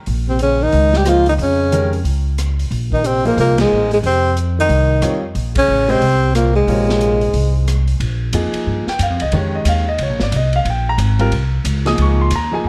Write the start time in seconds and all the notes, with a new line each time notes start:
0.06 A#1, open hi-hat
0.28 C3 C4
0.39 C#3 C#4, closed hi-hat
0.62 D#3 D#4
0.72 C#2, open hi-hat
0.93 G3 G4, snare
1.05 F3 A#3 D#4 F4 G#4 C5, cross-stick, closed hi-hat
1.26 D#3 D#4, open hi-hat
1.38 F2 C#3, open hi-hat
1.42 C#4
1.72 D#3 G#3 C#4 G4 A#4, closed hi-hat
1.93 open hi-hat
2.04 C#2, open hi-hat
2.38 cross-stick, closed hi-hat
2.59 open hi-hat
2.71 A#1, open hi-hat
2.92 D#3 D#4, kick
3.04 C3 C4, closed hi-hat
3.25 A#2 F3 A#3 D#4 G#4 C5, open hi-hat
3.37 C2 A#2 A#3, open hi-hat
3.58 G#2 G#3, snare, ride
3.70 A1
3.91 G#2 G#3, open hi-hat
4.03 F2 C3 C4, open hi-hat
4.37 closed hi-hat
4.58 D#3 D#4
4.69 C2, open hi-hat
5.01 F2 G3 C4 F4 A#4 C#5, cross-stick, closed hi-hat
5.35 A#1, open hi-hat
5.55 C#3 C#4, kick, ride
5.68 A1
5.88 C3 G#3 C4 C#4 G4 C5 D#5, open hi-hat
6.01 C2, open hi-hat
6.34 A#2 A#3, cross-stick, closed hi-hat
6.55 G#2 G#3
6.67 A#1 C3 F4 G4 A#4 C#5, open hi-hat
6.89 snare
7.01 closed hi-hat
7.21 open hi-hat
7.34 C2, open hi-hat
7.68 cross-stick, closed hi-hat
7.87 open hi-hat
8.00 A#1, ride
8.33 F2 F3 A#3 D#4 G#4, hi-hat pedal, ride
8.53 muted upright bass stroke, ride
8.66 G2
8.87 G5, muted upright bass stroke, snare
8.99 F#2 F5, hi-hat pedal, ride
9.10 F2
9.20 C#2 D#5, ride
9.32 F2 D#3 G#3 C#4 G4, ride
9.36 C#5
9.55 D#5
9.65 D#2 F5, hi-hat pedal, ride
9.89 D#5
9.98 C#2, ride
10.03 C#5
10.09 A#1
10.20 G#1 D5, snare
10.32 C2, hi-hat pedal, ride
10.36 D#5
10.53 F5, ride
10.65 A#1, ride
10.70 G5
10.89 A#5
10.98 G#1, hi-hat pedal, ride
11.19 G3 C4 F4 A#4, ride
11.31 C2, ride
11.64 C#2, hi-hat pedal, ride
11.85 F3 A#3 D#4 G#4 D#6, snare, ride
11.98 C#2, ride
12.02 C#6
12.21 C6
12.30 D#2, hi-hat pedal, ride
12.35 A#5
12.52 F3 A#3 D#4 G#4 G#5
12.64 F2